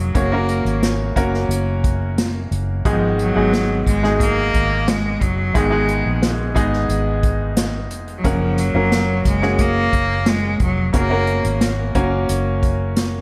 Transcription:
Already playing: fingered electric bass F1, cello F#3, upright piano A#3 C#4 F#4 G#4
0.15 fingered electric bass F#1, upright piano C#3 A#3 C#4 F#4 C#5, cello A#3, kick, closed hi-hat
0.32 upright piano A#3 C#4 F#4 A#4
0.49 closed hi-hat
0.65 fingered electric bass G#1, closed hi-hat
0.83 snare, closed hi-hat
1.16 fingered electric bass F#1, upright piano A#3 C#4 F#4 A#4, kick, closed hi-hat
1.34 snare
1.49 fingered electric bass F#1, closed hi-hat
1.84 kick, closed hi-hat
2.18 snare, closed hi-hat
2.51 fingered electric bass F#1, closed hi-hat
2.85 fingered electric bass G#1, upright piano G#2 D#3 G#3 B3 D#4 G#4, cello F3, kick, closed hi-hat
3.19 cello F#3, closed hi-hat
3.35 fingered electric bass G#1, upright piano G#3 B3 D#4 G#4
3.53 snare, closed hi-hat
3.87 fingered electric bass G#1, cello G#3, kick, closed hi-hat
4.03 upright piano B2 G#3 D#4 G#4, snare
4.20 cello A#3, kick, closed hi-hat
4.54 fingered electric bass G#1, kick, closed hi-hat
4.88 cello G#3, snare, closed hi-hat
5.21 fingered electric bass F#1, cello F#3, kick, closed hi-hat
5.54 fingered electric bass G#1, upright piano G#2 D#3 G#3 B3 D#4 G#4, cello G#3, kick, closed hi-hat
5.70 upright piano G#3 B3 D#4 G#4
5.89 closed hi-hat
6.06 fingered electric bass A#1
6.22 snare, closed hi-hat
6.55 fingered electric bass G#1, upright piano G#3 B3 D#4 G#4, kick, closed hi-hat
6.73 snare
6.89 fingered electric bass G#1, closed hi-hat
7.23 kick, closed hi-hat
7.57 snare, closed hi-hat
7.90 fingered electric bass F1, closed hi-hat
8.08 closed hi-hat
8.18 cello F#3
8.24 fingered electric bass F#1, upright piano C#3 A#3 C#4 A#4 F#5, cello F3, kick, closed hi-hat
8.58 cello F#3, closed hi-hat
8.74 fingered electric bass F#1, upright piano A#3 C#4 F#4 A#4
8.92 snare, closed hi-hat
9.25 fingered electric bass F#1, cello G#3, kick, closed hi-hat
9.42 upright piano A#3 C#4 F#4 G#4, snare
9.59 cello A#3, kick, closed hi-hat
9.93 fingered electric bass F#1, kick, closed hi-hat
10.26 cello G#3, snare, closed hi-hat
10.60 fingered electric bass F1, cello F#3, kick, closed hi-hat
10.93 fingered electric bass F#1, upright piano C#3 A#3 C#4 F#4 A#4, cello A#3, kick, closed hi-hat
11.10 upright piano A#3 C#4 F#4 A#4
11.27 closed hi-hat
11.44 fingered electric bass G#1, closed hi-hat
11.61 snare, closed hi-hat
11.95 fingered electric bass F#1, upright piano A#3 C#4 F#4 A#4, kick, closed hi-hat
12.29 fingered electric bass F#1, closed hi-hat
12.63 kick, closed hi-hat
12.96 snare, closed hi-hat

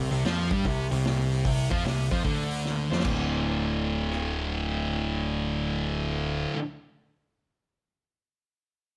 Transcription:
Already playing: distorted electric guitar C3
0.11 picked electric bass C2, distorted electric guitar C3, open hi-hat
0.25 picked electric bass F2, distorted electric guitar F3, snare, open hi-hat
0.50 picked electric bass G2, distorted electric guitar G3, kick, open hi-hat
0.65 picked electric bass C2, distorted electric guitar C3, kick, open hi-hat
0.91 picked electric bass C2, distorted electric guitar C3, open hi-hat
1.05 snare, open hi-hat
1.32 open hi-hat
1.45 picked electric bass C2, distorted electric guitar C3, kick, open hi-hat
1.70 picked electric bass F2, distorted electric guitar F3, kick, open hi-hat
1.85 picked electric bass C2, distorted electric guitar C3, snare, open hi-hat
2.11 picked electric bass F2, distorted electric guitar F3, kick, open hi-hat
2.24 picked electric bass D2, distorted electric guitar D3, kick, open hi-hat
2.51 open hi-hat
2.65 snare
2.91 picked electric bass F2, distorted electric guitar F3, snare
3.00 distorted electric guitar D2, snare
3.05 picked electric bass D1, distorted electric guitar A2 D3, kick, crash
4.12 cross-stick

